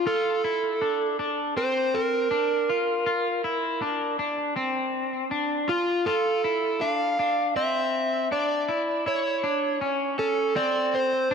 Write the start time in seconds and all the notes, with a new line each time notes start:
0.07 F4 A4
0.44 E4
0.81 D4
1.19 D4
1.57 C4 C5
1.94 A#4
2.31 D4
2.69 F4
3.06 F4
3.44 E4
3.82 D4
4.19 D4
4.56 C4
5.31 D4
5.69 F4
6.06 F4 A4
6.44 E4
6.81 D4 F5
7.19 D4
7.56 C4 E5
8.32 D4 D5
8.69 E4
9.06 E4 C#5
9.43 D4
9.81 C#4
10.19 C#4 A4
10.56 C4 D5
10.95 C5
11.31 D4